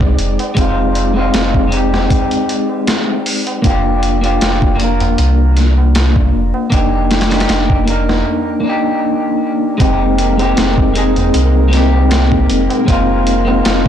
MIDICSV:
0, 0, Header, 1, 7, 480
1, 0, Start_track
1, 0, Tempo, 769231
1, 355, Time_signature, 4, 2, 24, 8
1, 8662, End_track
2, 0, Start_track
2, 0, Title_t, "Synth texture"
2, 0, Program_c, 0, 99
2, 0, Note_on_c, 0, 74, 84
2, 5154, Note_off_c, 0, 74, 0
2, 8662, End_track
3, 0, Start_track
3, 0, Title_t, "String machine"
3, 0, Program_c, 1, 50
3, 6115, Note_on_c, 1, 70, 89
3, 6116, Note_on_c, 1, 58, 84
3, 8662, Note_off_c, 1, 58, 0
3, 8662, Note_off_c, 1, 70, 0
3, 8662, End_track
4, 0, Start_track
4, 0, Title_t, "Clean electric guitar"
4, 0, Program_c, 2, 27
4, 0, Note_on_c, 2, 56, 70
4, 0, Note_on_c, 2, 60, 66
4, 0, Note_on_c, 2, 63, 64
4, 0, Note_on_c, 2, 68, 79
4, 315, Note_off_c, 2, 56, 0
4, 325, Note_off_c, 2, 60, 0
4, 334, Note_off_c, 2, 63, 0
4, 341, Note_on_c, 2, 56, 79
4, 343, Note_off_c, 2, 68, 0
4, 351, Note_on_c, 2, 60, 75
4, 361, Note_on_c, 2, 63, 75
4, 370, Note_on_c, 2, 65, 88
4, 687, Note_off_c, 2, 56, 0
4, 691, Note_off_c, 2, 60, 0
4, 696, Note_off_c, 2, 63, 0
4, 701, Note_off_c, 2, 65, 0
4, 711, Note_on_c, 2, 56, 77
4, 720, Note_on_c, 2, 60, 78
4, 728, Note_on_c, 2, 63, 68
4, 739, Note_on_c, 2, 65, 92
4, 1038, Note_off_c, 2, 56, 0
4, 1046, Note_off_c, 2, 60, 0
4, 1046, Note_on_c, 2, 56, 70
4, 1050, Note_off_c, 2, 63, 0
4, 1056, Note_off_c, 2, 65, 0
4, 1065, Note_on_c, 2, 60, 68
4, 1085, Note_on_c, 2, 63, 69
4, 1104, Note_on_c, 2, 67, 82
4, 2234, Note_off_c, 2, 56, 0
4, 2244, Note_off_c, 2, 60, 0
4, 2253, Note_off_c, 2, 63, 0
4, 2261, Note_on_c, 2, 58, 90
4, 2263, Note_off_c, 2, 67, 0
4, 2270, Note_on_c, 2, 62, 78
4, 2279, Note_on_c, 2, 65, 82
4, 2289, Note_on_c, 2, 67, 100
4, 2606, Note_off_c, 2, 58, 0
4, 2611, Note_off_c, 2, 62, 0
4, 2616, Note_off_c, 2, 65, 0
4, 2620, Note_off_c, 2, 67, 0
4, 2629, Note_on_c, 2, 58, 80
4, 2640, Note_on_c, 2, 62, 72
4, 2648, Note_on_c, 2, 65, 72
4, 2658, Note_on_c, 2, 67, 89
4, 2959, Note_off_c, 2, 58, 0
4, 2966, Note_off_c, 2, 62, 0
4, 2966, Note_on_c, 2, 58, 74
4, 2970, Note_off_c, 2, 65, 0
4, 2975, Note_off_c, 2, 67, 0
4, 2985, Note_on_c, 2, 62, 63
4, 3004, Note_on_c, 2, 65, 68
4, 3023, Note_on_c, 2, 70, 82
4, 4154, Note_off_c, 2, 58, 0
4, 4164, Note_off_c, 2, 62, 0
4, 4173, Note_off_c, 2, 65, 0
4, 4182, Note_off_c, 2, 70, 0
4, 4182, Note_on_c, 2, 58, 93
4, 4191, Note_on_c, 2, 62, 77
4, 4200, Note_on_c, 2, 63, 78
4, 4209, Note_on_c, 2, 67, 99
4, 4527, Note_off_c, 2, 58, 0
4, 4531, Note_off_c, 2, 62, 0
4, 4536, Note_off_c, 2, 63, 0
4, 4541, Note_off_c, 2, 67, 0
4, 4550, Note_on_c, 2, 58, 81
4, 4561, Note_on_c, 2, 62, 70
4, 4571, Note_on_c, 2, 63, 78
4, 4580, Note_on_c, 2, 67, 94
4, 4881, Note_off_c, 2, 58, 0
4, 4886, Note_off_c, 2, 62, 0
4, 4892, Note_off_c, 2, 63, 0
4, 4896, Note_off_c, 2, 67, 0
4, 4902, Note_on_c, 2, 58, 72
4, 4912, Note_on_c, 2, 62, 66
4, 4920, Note_on_c, 2, 63, 67
4, 4932, Note_on_c, 2, 70, 76
4, 5361, Note_off_c, 2, 58, 0
4, 5369, Note_on_c, 2, 58, 91
4, 5371, Note_off_c, 2, 62, 0
4, 5376, Note_off_c, 2, 63, 0
4, 5381, Note_off_c, 2, 70, 0
4, 5388, Note_on_c, 2, 62, 92
4, 5407, Note_on_c, 2, 63, 84
4, 5425, Note_on_c, 2, 67, 97
4, 6075, Note_off_c, 2, 58, 0
4, 6085, Note_off_c, 2, 62, 0
4, 6094, Note_off_c, 2, 63, 0
4, 6101, Note_on_c, 2, 56, 84
4, 6103, Note_off_c, 2, 67, 0
4, 6110, Note_on_c, 2, 60, 79
4, 6120, Note_on_c, 2, 63, 81
4, 6130, Note_on_c, 2, 67, 100
4, 6447, Note_off_c, 2, 56, 0
4, 6451, Note_off_c, 2, 60, 0
4, 6456, Note_off_c, 2, 63, 0
4, 6461, Note_off_c, 2, 67, 0
4, 6473, Note_on_c, 2, 56, 82
4, 6482, Note_on_c, 2, 60, 75
4, 6491, Note_on_c, 2, 63, 74
4, 6502, Note_on_c, 2, 67, 90
4, 6803, Note_off_c, 2, 56, 0
4, 6807, Note_off_c, 2, 60, 0
4, 6812, Note_off_c, 2, 63, 0
4, 6817, Note_off_c, 2, 67, 0
4, 6824, Note_on_c, 2, 56, 73
4, 6834, Note_on_c, 2, 60, 71
4, 6843, Note_on_c, 2, 63, 66
4, 6852, Note_on_c, 2, 68, 84
4, 7281, Note_off_c, 2, 56, 0
4, 7289, Note_on_c, 2, 56, 93
4, 7292, Note_off_c, 2, 60, 0
4, 7297, Note_off_c, 2, 63, 0
4, 7301, Note_off_c, 2, 68, 0
4, 7308, Note_on_c, 2, 60, 93
4, 7327, Note_on_c, 2, 63, 89
4, 7345, Note_on_c, 2, 67, 112
4, 7995, Note_off_c, 2, 56, 0
4, 8005, Note_off_c, 2, 60, 0
4, 8014, Note_off_c, 2, 63, 0
4, 8022, Note_on_c, 2, 56, 86
4, 8024, Note_off_c, 2, 67, 0
4, 8033, Note_on_c, 2, 60, 81
4, 8041, Note_on_c, 2, 63, 76
4, 8051, Note_on_c, 2, 65, 100
4, 8367, Note_off_c, 2, 56, 0
4, 8372, Note_off_c, 2, 60, 0
4, 8377, Note_off_c, 2, 63, 0
4, 8382, Note_off_c, 2, 65, 0
4, 8393, Note_on_c, 2, 56, 84
4, 8403, Note_on_c, 2, 60, 78
4, 8411, Note_on_c, 2, 63, 75
4, 8420, Note_on_c, 2, 65, 92
4, 8662, Note_off_c, 2, 56, 0
4, 8662, Note_off_c, 2, 60, 0
4, 8662, Note_off_c, 2, 63, 0
4, 8662, Note_off_c, 2, 65, 0
4, 8662, End_track
5, 0, Start_track
5, 0, Title_t, "Sub bass"
5, 0, Program_c, 3, 38
5, 0, Note_on_c, 3, 36, 97
5, 96, Note_off_c, 3, 36, 0
5, 118, Note_on_c, 3, 29, 101
5, 230, Note_off_c, 3, 29, 0
5, 357, Note_on_c, 3, 29, 94
5, 815, Note_off_c, 3, 29, 0
5, 838, Note_on_c, 3, 29, 96
5, 1295, Note_off_c, 3, 29, 0
5, 2274, Note_on_c, 3, 29, 96
5, 2733, Note_off_c, 3, 29, 0
5, 2758, Note_on_c, 3, 29, 95
5, 3215, Note_off_c, 3, 29, 0
5, 3235, Note_on_c, 3, 36, 100
5, 3934, Note_off_c, 3, 36, 0
5, 3959, Note_on_c, 3, 29, 106
5, 4071, Note_off_c, 3, 29, 0
5, 4196, Note_on_c, 3, 29, 97
5, 4654, Note_off_c, 3, 29, 0
5, 4676, Note_on_c, 3, 29, 88
5, 5134, Note_off_c, 3, 29, 0
5, 6119, Note_on_c, 3, 29, 97
5, 6576, Note_off_c, 3, 29, 0
5, 6601, Note_on_c, 3, 29, 93
5, 7057, Note_off_c, 3, 29, 0
5, 7080, Note_on_c, 3, 36, 94
5, 7776, Note_off_c, 3, 36, 0
5, 7803, Note_on_c, 3, 29, 104
5, 7913, Note_off_c, 3, 29, 0
5, 8038, Note_on_c, 3, 29, 99
5, 8495, Note_off_c, 3, 29, 0
5, 8522, Note_on_c, 3, 29, 96
5, 8662, Note_off_c, 3, 29, 0
5, 8662, End_track
6, 0, Start_track
6, 0, Title_t, "Tabla"
6, 6, Note_on_c, 9, 60, 41
6, 69, Note_off_c, 9, 60, 0
6, 249, Note_on_c, 9, 60, 73
6, 311, Note_off_c, 9, 60, 0
6, 356, Note_on_c, 9, 60, 59
6, 418, Note_off_c, 9, 60, 0
6, 485, Note_on_c, 9, 60, 30
6, 547, Note_off_c, 9, 60, 0
6, 723, Note_on_c, 9, 60, 74
6, 786, Note_off_c, 9, 60, 0
6, 834, Note_on_c, 9, 60, 58
6, 896, Note_off_c, 9, 60, 0
6, 963, Note_on_c, 9, 60, 33
6, 1025, Note_off_c, 9, 60, 0
6, 1202, Note_on_c, 9, 64, 79
6, 1207, Note_on_c, 9, 60, 72
6, 1264, Note_off_c, 9, 64, 0
6, 1269, Note_off_c, 9, 60, 0
6, 1310, Note_on_c, 9, 60, 57
6, 1372, Note_off_c, 9, 60, 0
6, 1441, Note_on_c, 9, 60, 39
6, 1504, Note_off_c, 9, 60, 0
6, 1679, Note_on_c, 9, 60, 67
6, 1742, Note_off_c, 9, 60, 0
6, 1794, Note_on_c, 9, 60, 60
6, 1856, Note_off_c, 9, 60, 0
6, 1926, Note_on_c, 9, 60, 35
6, 1989, Note_off_c, 9, 60, 0
6, 2164, Note_on_c, 9, 60, 63
6, 2226, Note_off_c, 9, 60, 0
6, 2276, Note_on_c, 9, 60, 55
6, 2338, Note_off_c, 9, 60, 0
6, 2404, Note_on_c, 9, 60, 31
6, 2466, Note_off_c, 9, 60, 0
6, 2641, Note_on_c, 9, 60, 72
6, 2703, Note_off_c, 9, 60, 0
6, 2754, Note_on_c, 9, 60, 57
6, 2816, Note_off_c, 9, 60, 0
6, 2892, Note_on_c, 9, 60, 36
6, 2955, Note_off_c, 9, 60, 0
6, 3122, Note_on_c, 9, 64, 77
6, 3126, Note_on_c, 9, 60, 69
6, 3185, Note_off_c, 9, 64, 0
6, 3188, Note_off_c, 9, 60, 0
6, 3235, Note_on_c, 9, 60, 58
6, 3297, Note_off_c, 9, 60, 0
6, 3364, Note_on_c, 9, 60, 33
6, 3426, Note_off_c, 9, 60, 0
6, 3605, Note_on_c, 9, 60, 64
6, 3667, Note_off_c, 9, 60, 0
6, 3719, Note_on_c, 9, 60, 57
6, 3781, Note_off_c, 9, 60, 0
6, 3844, Note_on_c, 9, 60, 35
6, 3906, Note_off_c, 9, 60, 0
6, 4081, Note_on_c, 9, 60, 76
6, 4143, Note_off_c, 9, 60, 0
6, 4195, Note_on_c, 9, 60, 62
6, 4257, Note_off_c, 9, 60, 0
6, 4321, Note_on_c, 9, 60, 30
6, 4383, Note_off_c, 9, 60, 0
6, 4566, Note_on_c, 9, 60, 73
6, 4628, Note_off_c, 9, 60, 0
6, 4674, Note_on_c, 9, 60, 64
6, 4737, Note_off_c, 9, 60, 0
6, 4806, Note_on_c, 9, 60, 30
6, 4869, Note_off_c, 9, 60, 0
6, 5047, Note_on_c, 9, 60, 67
6, 5048, Note_on_c, 9, 64, 83
6, 5110, Note_off_c, 9, 60, 0
6, 5111, Note_off_c, 9, 64, 0
6, 6116, Note_on_c, 9, 60, 69
6, 6178, Note_off_c, 9, 60, 0
6, 6248, Note_on_c, 9, 60, 37
6, 6310, Note_off_c, 9, 60, 0
6, 6486, Note_on_c, 9, 60, 80
6, 6548, Note_off_c, 9, 60, 0
6, 6593, Note_on_c, 9, 60, 67
6, 6655, Note_off_c, 9, 60, 0
6, 6724, Note_on_c, 9, 60, 36
6, 6786, Note_off_c, 9, 60, 0
6, 6968, Note_on_c, 9, 60, 72
6, 6968, Note_on_c, 9, 64, 89
6, 7030, Note_off_c, 9, 64, 0
6, 7031, Note_off_c, 9, 60, 0
6, 7069, Note_on_c, 9, 60, 64
6, 7131, Note_off_c, 9, 60, 0
6, 7202, Note_on_c, 9, 60, 40
6, 7264, Note_off_c, 9, 60, 0
6, 7447, Note_on_c, 9, 60, 74
6, 7510, Note_off_c, 9, 60, 0
6, 7551, Note_on_c, 9, 60, 71
6, 7614, Note_off_c, 9, 60, 0
6, 7686, Note_on_c, 9, 60, 34
6, 7748, Note_off_c, 9, 60, 0
6, 7922, Note_on_c, 9, 60, 75
6, 7985, Note_off_c, 9, 60, 0
6, 8036, Note_on_c, 9, 60, 61
6, 8098, Note_off_c, 9, 60, 0
6, 8170, Note_on_c, 9, 60, 38
6, 8232, Note_off_c, 9, 60, 0
6, 8409, Note_on_c, 9, 60, 77
6, 8471, Note_off_c, 9, 60, 0
6, 8520, Note_on_c, 9, 60, 64
6, 8582, Note_off_c, 9, 60, 0
6, 8662, End_track
7, 0, Start_track
7, 0, Title_t, "Drums"
7, 4, Note_on_c, 9, 36, 87
7, 67, Note_off_c, 9, 36, 0
7, 116, Note_on_c, 9, 42, 70
7, 178, Note_off_c, 9, 42, 0
7, 245, Note_on_c, 9, 42, 41
7, 307, Note_off_c, 9, 42, 0
7, 353, Note_on_c, 9, 42, 87
7, 354, Note_on_c, 9, 36, 103
7, 416, Note_off_c, 9, 36, 0
7, 416, Note_off_c, 9, 42, 0
7, 595, Note_on_c, 9, 42, 65
7, 657, Note_off_c, 9, 42, 0
7, 835, Note_on_c, 9, 42, 84
7, 840, Note_on_c, 9, 38, 114
7, 897, Note_off_c, 9, 42, 0
7, 902, Note_off_c, 9, 38, 0
7, 964, Note_on_c, 9, 36, 90
7, 1026, Note_off_c, 9, 36, 0
7, 1074, Note_on_c, 9, 42, 61
7, 1137, Note_off_c, 9, 42, 0
7, 1210, Note_on_c, 9, 38, 47
7, 1272, Note_off_c, 9, 38, 0
7, 1313, Note_on_c, 9, 42, 82
7, 1314, Note_on_c, 9, 36, 105
7, 1376, Note_off_c, 9, 36, 0
7, 1376, Note_off_c, 9, 42, 0
7, 1443, Note_on_c, 9, 42, 45
7, 1505, Note_off_c, 9, 42, 0
7, 1555, Note_on_c, 9, 42, 64
7, 1618, Note_off_c, 9, 42, 0
7, 1794, Note_on_c, 9, 42, 82
7, 1798, Note_on_c, 9, 38, 116
7, 1856, Note_off_c, 9, 42, 0
7, 1861, Note_off_c, 9, 38, 0
7, 2035, Note_on_c, 9, 46, 79
7, 2097, Note_off_c, 9, 46, 0
7, 2164, Note_on_c, 9, 42, 41
7, 2227, Note_off_c, 9, 42, 0
7, 2272, Note_on_c, 9, 42, 86
7, 2273, Note_on_c, 9, 36, 112
7, 2335, Note_off_c, 9, 42, 0
7, 2336, Note_off_c, 9, 36, 0
7, 2513, Note_on_c, 9, 42, 63
7, 2575, Note_off_c, 9, 42, 0
7, 2644, Note_on_c, 9, 42, 42
7, 2706, Note_off_c, 9, 42, 0
7, 2754, Note_on_c, 9, 42, 82
7, 2759, Note_on_c, 9, 38, 110
7, 2816, Note_off_c, 9, 42, 0
7, 2821, Note_off_c, 9, 38, 0
7, 2883, Note_on_c, 9, 36, 94
7, 2946, Note_off_c, 9, 36, 0
7, 2993, Note_on_c, 9, 42, 64
7, 3055, Note_off_c, 9, 42, 0
7, 3123, Note_on_c, 9, 42, 44
7, 3185, Note_off_c, 9, 42, 0
7, 3234, Note_on_c, 9, 42, 85
7, 3296, Note_off_c, 9, 42, 0
7, 3473, Note_on_c, 9, 42, 61
7, 3478, Note_on_c, 9, 38, 32
7, 3535, Note_off_c, 9, 42, 0
7, 3540, Note_off_c, 9, 38, 0
7, 3712, Note_on_c, 9, 42, 89
7, 3717, Note_on_c, 9, 38, 106
7, 3775, Note_off_c, 9, 42, 0
7, 3780, Note_off_c, 9, 38, 0
7, 3843, Note_on_c, 9, 36, 92
7, 3906, Note_off_c, 9, 36, 0
7, 4193, Note_on_c, 9, 42, 88
7, 4194, Note_on_c, 9, 36, 101
7, 4256, Note_off_c, 9, 36, 0
7, 4256, Note_off_c, 9, 42, 0
7, 4434, Note_on_c, 9, 42, 61
7, 4439, Note_on_c, 9, 38, 79
7, 4497, Note_off_c, 9, 42, 0
7, 4499, Note_on_c, 9, 42, 60
7, 4502, Note_off_c, 9, 38, 0
7, 4504, Note_on_c, 9, 38, 79
7, 4562, Note_off_c, 9, 42, 0
7, 4563, Note_on_c, 9, 42, 61
7, 4567, Note_off_c, 9, 38, 0
7, 4568, Note_on_c, 9, 38, 85
7, 4619, Note_off_c, 9, 42, 0
7, 4619, Note_on_c, 9, 42, 64
7, 4624, Note_off_c, 9, 38, 0
7, 4624, Note_on_c, 9, 38, 85
7, 4674, Note_off_c, 9, 42, 0
7, 4674, Note_on_c, 9, 42, 89
7, 4679, Note_off_c, 9, 38, 0
7, 4679, Note_on_c, 9, 38, 106
7, 4736, Note_off_c, 9, 42, 0
7, 4741, Note_off_c, 9, 38, 0
7, 4804, Note_on_c, 9, 36, 92
7, 4867, Note_off_c, 9, 36, 0
7, 4914, Note_on_c, 9, 42, 64
7, 4977, Note_off_c, 9, 42, 0
7, 5051, Note_on_c, 9, 38, 46
7, 5113, Note_off_c, 9, 38, 0
7, 6115, Note_on_c, 9, 36, 118
7, 6116, Note_on_c, 9, 42, 92
7, 6178, Note_off_c, 9, 36, 0
7, 6178, Note_off_c, 9, 42, 0
7, 6355, Note_on_c, 9, 42, 65
7, 6418, Note_off_c, 9, 42, 0
7, 6486, Note_on_c, 9, 42, 42
7, 6548, Note_off_c, 9, 42, 0
7, 6596, Note_on_c, 9, 42, 83
7, 6601, Note_on_c, 9, 38, 108
7, 6659, Note_off_c, 9, 42, 0
7, 6664, Note_off_c, 9, 38, 0
7, 6725, Note_on_c, 9, 36, 96
7, 6788, Note_off_c, 9, 36, 0
7, 6836, Note_on_c, 9, 42, 65
7, 6898, Note_off_c, 9, 42, 0
7, 6966, Note_on_c, 9, 42, 45
7, 7028, Note_off_c, 9, 42, 0
7, 7076, Note_on_c, 9, 42, 87
7, 7139, Note_off_c, 9, 42, 0
7, 7318, Note_on_c, 9, 42, 61
7, 7323, Note_on_c, 9, 38, 34
7, 7381, Note_off_c, 9, 42, 0
7, 7386, Note_off_c, 9, 38, 0
7, 7556, Note_on_c, 9, 42, 89
7, 7561, Note_on_c, 9, 38, 116
7, 7618, Note_off_c, 9, 42, 0
7, 7623, Note_off_c, 9, 38, 0
7, 7686, Note_on_c, 9, 36, 92
7, 7748, Note_off_c, 9, 36, 0
7, 7797, Note_on_c, 9, 42, 73
7, 7860, Note_off_c, 9, 42, 0
7, 7928, Note_on_c, 9, 42, 39
7, 7990, Note_off_c, 9, 42, 0
7, 8037, Note_on_c, 9, 36, 112
7, 8037, Note_on_c, 9, 42, 87
7, 8099, Note_off_c, 9, 36, 0
7, 8100, Note_off_c, 9, 42, 0
7, 8278, Note_on_c, 9, 42, 69
7, 8341, Note_off_c, 9, 42, 0
7, 8518, Note_on_c, 9, 42, 90
7, 8523, Note_on_c, 9, 38, 117
7, 8581, Note_off_c, 9, 42, 0
7, 8586, Note_off_c, 9, 38, 0
7, 8662, End_track
0, 0, End_of_file